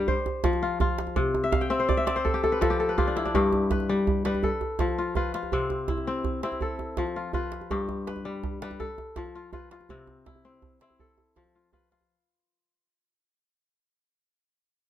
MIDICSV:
0, 0, Header, 1, 3, 480
1, 0, Start_track
1, 0, Tempo, 364520
1, 1533, Time_signature, 12, 3, 24, 8
1, 19610, End_track
2, 0, Start_track
2, 0, Title_t, "Kora"
2, 0, Program_c, 0, 46
2, 0, Note_on_c, 0, 43, 84
2, 0, Note_on_c, 0, 55, 75
2, 0, Note_on_c, 0, 65, 70
2, 0, Note_on_c, 0, 67, 57
2, 0, Note_on_c, 0, 71, 60
2, 104, Note_on_c, 0, 72, 64
2, 164, Note_off_c, 0, 43, 0
2, 164, Note_off_c, 0, 55, 0
2, 183, Note_off_c, 0, 71, 0
2, 187, Note_off_c, 0, 65, 0
2, 580, Note_on_c, 0, 53, 76
2, 823, Note_on_c, 0, 65, 63
2, 1058, Note_off_c, 0, 65, 0
2, 1063, Note_on_c, 0, 65, 70
2, 1529, Note_on_c, 0, 48, 83
2, 1598, Note_off_c, 0, 53, 0
2, 1667, Note_off_c, 0, 72, 0
2, 1724, Note_off_c, 0, 67, 0
2, 1891, Note_on_c, 0, 76, 66
2, 1970, Note_off_c, 0, 65, 0
2, 2002, Note_on_c, 0, 77, 62
2, 2121, Note_on_c, 0, 79, 67
2, 2238, Note_off_c, 0, 76, 0
2, 2239, Note_on_c, 0, 60, 75
2, 2243, Note_on_c, 0, 76, 64
2, 2322, Note_off_c, 0, 77, 0
2, 2364, Note_on_c, 0, 72, 62
2, 2482, Note_on_c, 0, 74, 68
2, 2593, Note_off_c, 0, 76, 0
2, 2599, Note_on_c, 0, 76, 64
2, 2716, Note_off_c, 0, 60, 0
2, 2718, Note_off_c, 0, 74, 0
2, 2722, Note_on_c, 0, 60, 71
2, 2723, Note_on_c, 0, 74, 63
2, 2837, Note_off_c, 0, 72, 0
2, 2842, Note_on_c, 0, 72, 66
2, 2958, Note_on_c, 0, 69, 59
2, 3033, Note_off_c, 0, 48, 0
2, 3080, Note_on_c, 0, 67, 65
2, 3202, Note_off_c, 0, 69, 0
2, 3207, Note_on_c, 0, 69, 61
2, 3320, Note_on_c, 0, 71, 66
2, 3347, Note_off_c, 0, 79, 0
2, 3399, Note_off_c, 0, 60, 0
2, 3399, Note_off_c, 0, 72, 0
2, 3438, Note_off_c, 0, 69, 0
2, 3440, Note_on_c, 0, 53, 69
2, 3443, Note_on_c, 0, 69, 66
2, 3519, Note_off_c, 0, 76, 0
2, 3551, Note_off_c, 0, 67, 0
2, 3557, Note_on_c, 0, 67, 67
2, 3678, Note_off_c, 0, 69, 0
2, 3683, Note_on_c, 0, 69, 60
2, 3798, Note_off_c, 0, 71, 0
2, 3803, Note_on_c, 0, 71, 66
2, 3916, Note_off_c, 0, 67, 0
2, 3921, Note_on_c, 0, 65, 68
2, 3922, Note_on_c, 0, 67, 58
2, 4047, Note_on_c, 0, 62, 57
2, 4166, Note_on_c, 0, 64, 63
2, 4182, Note_off_c, 0, 74, 0
2, 4278, Note_off_c, 0, 62, 0
2, 4283, Note_on_c, 0, 62, 61
2, 4406, Note_off_c, 0, 67, 0
2, 4409, Note_on_c, 0, 43, 89
2, 4412, Note_on_c, 0, 67, 73
2, 4468, Note_off_c, 0, 53, 0
2, 4885, Note_off_c, 0, 71, 0
2, 4891, Note_on_c, 0, 71, 64
2, 5128, Note_on_c, 0, 55, 83
2, 5418, Note_off_c, 0, 69, 0
2, 5587, Note_off_c, 0, 55, 0
2, 5600, Note_off_c, 0, 71, 0
2, 5602, Note_on_c, 0, 55, 75
2, 5605, Note_on_c, 0, 71, 64
2, 5841, Note_on_c, 0, 69, 63
2, 5903, Note_off_c, 0, 43, 0
2, 5903, Note_off_c, 0, 55, 0
2, 5914, Note_off_c, 0, 65, 0
2, 6229, Note_off_c, 0, 64, 0
2, 6271, Note_off_c, 0, 67, 0
2, 6322, Note_on_c, 0, 53, 77
2, 6495, Note_off_c, 0, 62, 0
2, 6564, Note_on_c, 0, 65, 71
2, 6794, Note_off_c, 0, 65, 0
2, 6796, Note_off_c, 0, 71, 0
2, 6799, Note_on_c, 0, 65, 75
2, 6801, Note_on_c, 0, 71, 64
2, 7032, Note_off_c, 0, 65, 0
2, 7037, Note_on_c, 0, 65, 63
2, 7280, Note_on_c, 0, 48, 84
2, 7283, Note_on_c, 0, 60, 77
2, 7339, Note_off_c, 0, 53, 0
2, 7576, Note_off_c, 0, 69, 0
2, 7755, Note_on_c, 0, 64, 62
2, 7834, Note_off_c, 0, 65, 0
2, 7992, Note_off_c, 0, 60, 0
2, 7998, Note_on_c, 0, 60, 83
2, 8077, Note_off_c, 0, 71, 0
2, 8466, Note_off_c, 0, 60, 0
2, 8468, Note_off_c, 0, 64, 0
2, 8472, Note_on_c, 0, 60, 76
2, 8474, Note_on_c, 0, 64, 63
2, 8717, Note_on_c, 0, 69, 62
2, 8776, Note_off_c, 0, 48, 0
2, 9193, Note_on_c, 0, 53, 82
2, 9272, Note_off_c, 0, 64, 0
2, 9432, Note_on_c, 0, 65, 67
2, 9662, Note_off_c, 0, 65, 0
2, 9667, Note_on_c, 0, 65, 75
2, 9669, Note_on_c, 0, 71, 65
2, 9749, Note_off_c, 0, 60, 0
2, 10152, Note_on_c, 0, 43, 84
2, 10155, Note_on_c, 0, 67, 72
2, 10215, Note_off_c, 0, 53, 0
2, 10452, Note_off_c, 0, 69, 0
2, 10623, Note_off_c, 0, 71, 0
2, 10628, Note_on_c, 0, 71, 63
2, 10866, Note_on_c, 0, 55, 79
2, 11336, Note_off_c, 0, 55, 0
2, 11347, Note_off_c, 0, 71, 0
2, 11351, Note_on_c, 0, 55, 76
2, 11353, Note_on_c, 0, 71, 64
2, 11585, Note_on_c, 0, 69, 68
2, 11656, Note_off_c, 0, 55, 0
2, 11657, Note_off_c, 0, 43, 0
2, 11660, Note_off_c, 0, 65, 0
2, 12015, Note_off_c, 0, 67, 0
2, 12075, Note_on_c, 0, 53, 85
2, 12317, Note_on_c, 0, 65, 68
2, 12545, Note_off_c, 0, 65, 0
2, 12547, Note_off_c, 0, 71, 0
2, 12550, Note_on_c, 0, 65, 81
2, 12552, Note_on_c, 0, 71, 63
2, 12790, Note_off_c, 0, 65, 0
2, 12795, Note_on_c, 0, 65, 63
2, 13036, Note_on_c, 0, 48, 87
2, 13036, Note_on_c, 0, 60, 72
2, 13099, Note_off_c, 0, 53, 0
2, 13320, Note_off_c, 0, 69, 0
2, 13517, Note_on_c, 0, 64, 63
2, 13596, Note_off_c, 0, 65, 0
2, 13753, Note_off_c, 0, 60, 0
2, 13758, Note_on_c, 0, 60, 76
2, 13837, Note_off_c, 0, 71, 0
2, 14238, Note_off_c, 0, 60, 0
2, 14241, Note_off_c, 0, 64, 0
2, 14243, Note_on_c, 0, 60, 72
2, 14246, Note_on_c, 0, 64, 66
2, 14485, Note_on_c, 0, 69, 61
2, 14542, Note_off_c, 0, 48, 0
2, 14969, Note_on_c, 0, 53, 81
2, 15048, Note_off_c, 0, 64, 0
2, 15214, Note_on_c, 0, 65, 67
2, 15442, Note_off_c, 0, 65, 0
2, 15447, Note_on_c, 0, 65, 71
2, 15452, Note_on_c, 0, 71, 63
2, 15531, Note_off_c, 0, 60, 0
2, 15686, Note_off_c, 0, 65, 0
2, 15692, Note_on_c, 0, 65, 59
2, 15987, Note_off_c, 0, 53, 0
2, 16220, Note_off_c, 0, 69, 0
2, 17071, Note_off_c, 0, 71, 0
2, 17685, Note_off_c, 0, 65, 0
2, 19610, End_track
3, 0, Start_track
3, 0, Title_t, "Djembe"
3, 102, Note_on_c, 9, 64, 63
3, 234, Note_off_c, 9, 64, 0
3, 342, Note_on_c, 9, 63, 61
3, 473, Note_off_c, 9, 63, 0
3, 576, Note_on_c, 9, 62, 68
3, 576, Note_on_c, 9, 64, 64
3, 699, Note_off_c, 9, 62, 0
3, 699, Note_on_c, 9, 62, 19
3, 699, Note_on_c, 9, 63, 49
3, 708, Note_off_c, 9, 64, 0
3, 831, Note_off_c, 9, 62, 0
3, 831, Note_off_c, 9, 63, 0
3, 1056, Note_on_c, 9, 63, 68
3, 1056, Note_on_c, 9, 64, 68
3, 1187, Note_off_c, 9, 63, 0
3, 1187, Note_off_c, 9, 64, 0
3, 1295, Note_on_c, 9, 62, 68
3, 1406, Note_on_c, 9, 63, 52
3, 1427, Note_off_c, 9, 62, 0
3, 1528, Note_on_c, 9, 64, 68
3, 1538, Note_off_c, 9, 63, 0
3, 1660, Note_off_c, 9, 64, 0
3, 1771, Note_on_c, 9, 63, 70
3, 1903, Note_off_c, 9, 63, 0
3, 2009, Note_on_c, 9, 62, 65
3, 2009, Note_on_c, 9, 64, 65
3, 2132, Note_on_c, 9, 63, 55
3, 2140, Note_off_c, 9, 62, 0
3, 2140, Note_off_c, 9, 64, 0
3, 2255, Note_on_c, 9, 62, 21
3, 2264, Note_off_c, 9, 63, 0
3, 2387, Note_off_c, 9, 62, 0
3, 2492, Note_on_c, 9, 63, 67
3, 2492, Note_on_c, 9, 64, 61
3, 2624, Note_off_c, 9, 63, 0
3, 2624, Note_off_c, 9, 64, 0
3, 2729, Note_on_c, 9, 62, 65
3, 2852, Note_on_c, 9, 63, 48
3, 2861, Note_off_c, 9, 62, 0
3, 2972, Note_on_c, 9, 62, 21
3, 2972, Note_on_c, 9, 64, 62
3, 2984, Note_off_c, 9, 63, 0
3, 3104, Note_off_c, 9, 62, 0
3, 3104, Note_off_c, 9, 64, 0
3, 3209, Note_on_c, 9, 63, 62
3, 3330, Note_on_c, 9, 62, 19
3, 3341, Note_off_c, 9, 63, 0
3, 3450, Note_off_c, 9, 62, 0
3, 3450, Note_on_c, 9, 62, 60
3, 3450, Note_on_c, 9, 64, 61
3, 3570, Note_on_c, 9, 63, 46
3, 3582, Note_off_c, 9, 62, 0
3, 3582, Note_off_c, 9, 64, 0
3, 3701, Note_off_c, 9, 63, 0
3, 3927, Note_on_c, 9, 63, 65
3, 3927, Note_on_c, 9, 64, 64
3, 4059, Note_off_c, 9, 63, 0
3, 4059, Note_off_c, 9, 64, 0
3, 4170, Note_on_c, 9, 62, 61
3, 4288, Note_off_c, 9, 62, 0
3, 4288, Note_on_c, 9, 62, 18
3, 4288, Note_on_c, 9, 63, 47
3, 4406, Note_on_c, 9, 64, 67
3, 4420, Note_off_c, 9, 62, 0
3, 4420, Note_off_c, 9, 63, 0
3, 4538, Note_off_c, 9, 64, 0
3, 4642, Note_on_c, 9, 63, 65
3, 4766, Note_on_c, 9, 62, 20
3, 4773, Note_off_c, 9, 63, 0
3, 4880, Note_off_c, 9, 62, 0
3, 4880, Note_on_c, 9, 62, 63
3, 4880, Note_on_c, 9, 64, 61
3, 5005, Note_on_c, 9, 63, 51
3, 5012, Note_off_c, 9, 62, 0
3, 5012, Note_off_c, 9, 64, 0
3, 5136, Note_off_c, 9, 63, 0
3, 5363, Note_on_c, 9, 63, 67
3, 5363, Note_on_c, 9, 64, 63
3, 5495, Note_off_c, 9, 63, 0
3, 5495, Note_off_c, 9, 64, 0
3, 5597, Note_on_c, 9, 62, 68
3, 5720, Note_on_c, 9, 63, 50
3, 5728, Note_off_c, 9, 62, 0
3, 5831, Note_on_c, 9, 64, 66
3, 5852, Note_off_c, 9, 63, 0
3, 5963, Note_off_c, 9, 64, 0
3, 6070, Note_on_c, 9, 63, 60
3, 6202, Note_off_c, 9, 63, 0
3, 6307, Note_on_c, 9, 62, 64
3, 6307, Note_on_c, 9, 64, 68
3, 6428, Note_on_c, 9, 63, 52
3, 6438, Note_off_c, 9, 62, 0
3, 6438, Note_off_c, 9, 64, 0
3, 6560, Note_off_c, 9, 63, 0
3, 6786, Note_on_c, 9, 63, 70
3, 6786, Note_on_c, 9, 64, 70
3, 6918, Note_off_c, 9, 63, 0
3, 6918, Note_off_c, 9, 64, 0
3, 7033, Note_on_c, 9, 62, 71
3, 7149, Note_on_c, 9, 63, 49
3, 7165, Note_off_c, 9, 62, 0
3, 7271, Note_on_c, 9, 64, 69
3, 7280, Note_off_c, 9, 63, 0
3, 7403, Note_off_c, 9, 64, 0
3, 7505, Note_on_c, 9, 63, 68
3, 7629, Note_on_c, 9, 62, 21
3, 7637, Note_off_c, 9, 63, 0
3, 7743, Note_off_c, 9, 62, 0
3, 7743, Note_on_c, 9, 62, 62
3, 7743, Note_on_c, 9, 64, 66
3, 7866, Note_on_c, 9, 63, 52
3, 7875, Note_off_c, 9, 62, 0
3, 7875, Note_off_c, 9, 64, 0
3, 7998, Note_off_c, 9, 63, 0
3, 8222, Note_on_c, 9, 63, 64
3, 8222, Note_on_c, 9, 64, 65
3, 8354, Note_off_c, 9, 63, 0
3, 8354, Note_off_c, 9, 64, 0
3, 8470, Note_on_c, 9, 62, 68
3, 8586, Note_on_c, 9, 63, 54
3, 8601, Note_off_c, 9, 62, 0
3, 8701, Note_on_c, 9, 64, 64
3, 8717, Note_off_c, 9, 63, 0
3, 8833, Note_off_c, 9, 64, 0
3, 8941, Note_on_c, 9, 63, 64
3, 9073, Note_off_c, 9, 63, 0
3, 9179, Note_on_c, 9, 62, 68
3, 9179, Note_on_c, 9, 64, 64
3, 9306, Note_off_c, 9, 62, 0
3, 9306, Note_on_c, 9, 62, 19
3, 9306, Note_on_c, 9, 63, 47
3, 9311, Note_off_c, 9, 64, 0
3, 9438, Note_off_c, 9, 62, 0
3, 9438, Note_off_c, 9, 63, 0
3, 9657, Note_on_c, 9, 63, 66
3, 9657, Note_on_c, 9, 64, 67
3, 9789, Note_off_c, 9, 63, 0
3, 9789, Note_off_c, 9, 64, 0
3, 9898, Note_on_c, 9, 62, 66
3, 10024, Note_on_c, 9, 63, 52
3, 10029, Note_off_c, 9, 62, 0
3, 10148, Note_on_c, 9, 64, 68
3, 10156, Note_off_c, 9, 63, 0
3, 10279, Note_off_c, 9, 64, 0
3, 10385, Note_on_c, 9, 63, 71
3, 10505, Note_on_c, 9, 62, 21
3, 10517, Note_off_c, 9, 63, 0
3, 10633, Note_off_c, 9, 62, 0
3, 10633, Note_on_c, 9, 62, 70
3, 10745, Note_on_c, 9, 63, 55
3, 10764, Note_off_c, 9, 62, 0
3, 10876, Note_off_c, 9, 63, 0
3, 11107, Note_on_c, 9, 63, 70
3, 11107, Note_on_c, 9, 64, 67
3, 11239, Note_off_c, 9, 63, 0
3, 11239, Note_off_c, 9, 64, 0
3, 11351, Note_on_c, 9, 62, 73
3, 11468, Note_on_c, 9, 63, 55
3, 11483, Note_off_c, 9, 62, 0
3, 11590, Note_on_c, 9, 64, 68
3, 11600, Note_off_c, 9, 63, 0
3, 11722, Note_off_c, 9, 64, 0
3, 11827, Note_on_c, 9, 63, 68
3, 11958, Note_off_c, 9, 63, 0
3, 12063, Note_on_c, 9, 62, 69
3, 12063, Note_on_c, 9, 64, 71
3, 12186, Note_off_c, 9, 62, 0
3, 12186, Note_on_c, 9, 62, 21
3, 12186, Note_on_c, 9, 63, 55
3, 12194, Note_off_c, 9, 64, 0
3, 12318, Note_off_c, 9, 62, 0
3, 12318, Note_off_c, 9, 63, 0
3, 12545, Note_on_c, 9, 63, 71
3, 12545, Note_on_c, 9, 64, 74
3, 12677, Note_off_c, 9, 63, 0
3, 12677, Note_off_c, 9, 64, 0
3, 12789, Note_on_c, 9, 62, 74
3, 12912, Note_on_c, 9, 63, 53
3, 12921, Note_off_c, 9, 62, 0
3, 13027, Note_on_c, 9, 64, 71
3, 13044, Note_off_c, 9, 63, 0
3, 13159, Note_off_c, 9, 64, 0
3, 13265, Note_on_c, 9, 62, 24
3, 13265, Note_on_c, 9, 63, 75
3, 13397, Note_off_c, 9, 62, 0
3, 13397, Note_off_c, 9, 63, 0
3, 13515, Note_on_c, 9, 62, 72
3, 13515, Note_on_c, 9, 64, 70
3, 13639, Note_off_c, 9, 62, 0
3, 13639, Note_on_c, 9, 62, 22
3, 13639, Note_on_c, 9, 63, 56
3, 13646, Note_off_c, 9, 64, 0
3, 13771, Note_off_c, 9, 62, 0
3, 13771, Note_off_c, 9, 63, 0
3, 13989, Note_on_c, 9, 63, 67
3, 13989, Note_on_c, 9, 64, 71
3, 14121, Note_off_c, 9, 63, 0
3, 14121, Note_off_c, 9, 64, 0
3, 14235, Note_on_c, 9, 62, 70
3, 14358, Note_off_c, 9, 62, 0
3, 14358, Note_on_c, 9, 62, 21
3, 14358, Note_on_c, 9, 63, 54
3, 14479, Note_on_c, 9, 64, 69
3, 14490, Note_off_c, 9, 62, 0
3, 14490, Note_off_c, 9, 63, 0
3, 14611, Note_off_c, 9, 64, 0
3, 14718, Note_on_c, 9, 63, 61
3, 14849, Note_off_c, 9, 63, 0
3, 14962, Note_on_c, 9, 62, 70
3, 14962, Note_on_c, 9, 64, 67
3, 15085, Note_on_c, 9, 63, 51
3, 15094, Note_off_c, 9, 62, 0
3, 15094, Note_off_c, 9, 64, 0
3, 15217, Note_off_c, 9, 63, 0
3, 15443, Note_on_c, 9, 63, 70
3, 15443, Note_on_c, 9, 64, 67
3, 15575, Note_off_c, 9, 63, 0
3, 15575, Note_off_c, 9, 64, 0
3, 15696, Note_on_c, 9, 62, 64
3, 15813, Note_on_c, 9, 63, 46
3, 15828, Note_off_c, 9, 62, 0
3, 15945, Note_off_c, 9, 63, 0
3, 19610, End_track
0, 0, End_of_file